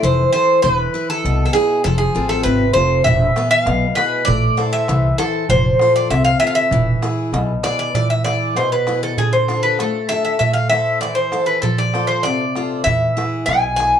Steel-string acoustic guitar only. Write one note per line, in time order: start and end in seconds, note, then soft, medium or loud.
0.00 0.22 E4 soft
0.00 0.22 A4 soft
0.00 0.22 C5 medium
0.04 0.63 E3 medium
0.34 0.58 E4 medium
0.34 0.58 A4 soft
0.34 0.58 C5 soft
0.64 1.23 E3 medium
0.94 1.43 E4 medium
0.94 1.43 B4 medium
1.25 1.84 B2 medium
1.55 1.79 E4 medium
1.55 1.79 G#4 soft
1.55 1.80 B4 medium
1.86 2.44 F3 medium
2.15 2.64 C4 medium
2.15 2.64 F4 soft
2.15 2.64 A4 soft
2.46 3.05 C3 medium
2.75 3.00 F4 soft
2.75 3.00 A4 soft
2.75 3.00 C5 soft
3.07 3.66 E3 medium
3.36 3.85 B3 soft
3.36 3.86 G#4 soft
3.36 3.86 B4 medium
3.67 4.26 B2 medium
3.96 4.21 E4 soft
3.96 4.22 G#4 soft
3.96 4.22 B4 medium
4.27 4.87 A3 medium
4.57 5.06 E4 medium
4.57 5.07 A4 soft
4.57 5.07 C5 medium
4.89 5.48 E3 medium
5.19 5.44 E4 soft
5.19 5.44 A4 soft
5.19 5.44 C5 medium
5.50 6.09 F3 medium
5.81 6.30 F4 soft
5.81 6.30 A4 soft
5.81 6.30 C5 medium
6.11 6.70 C3 medium
6.42 6.66 F4 soft
6.42 6.67 A4 soft
6.42 6.67 C5 medium
6.72 7.32 E3 medium
7.03 7.52 E4 medium
7.03 7.52 G#4 medium
7.03 7.52 B4 medium
7.34 7.93 B2 medium
7.63 7.88 E4 medium
7.63 7.89 G#4 soft
7.63 7.89 B4 medium
7.95 8.54 E3 medium
8.25 8.75 E4 soft
8.25 8.75 G#4 soft
8.25 8.75 B4 medium
8.57 9.16 B2 medium
8.87 9.12 E4 soft
8.87 9.12 G#4 soft
8.87 9.12 B4 medium
9.18 9.77 D3 medium
9.49 9.98 D4 medium
9.49 9.98 F4 soft
9.49 9.98 A4 soft
9.80 10.39 A3 medium
10.11 10.35 D4 soft
10.11 10.35 F4 soft
10.11 10.36 A4 medium
10.41 11.00 A3 medium
10.72 11.21 E4 medium
10.72 11.21 A4 soft
10.72 11.21 C5 soft
11.03 11.62 E3 medium
11.33 11.57 E4 soft
11.33 11.58 A4 soft
11.33 11.58 C5 soft
11.63 12.23 F3 medium
11.95 12.44 F4 soft
11.95 12.44 A4 soft
11.95 12.44 C5 medium
12.25 12.85 C3 medium
12.56 12.81 F4 soft
12.56 12.81 A4 soft
12.56 12.81 C5 soft
12.87 13.46 E3 medium
13.17 13.66 E4 medium
13.17 13.67 G#4 soft
13.17 13.67 B4 medium
13.48 14.00 B2 medium
13.79 14.00 E4 soft
13.79 14.00 G#4 soft
13.79 14.00 B4 medium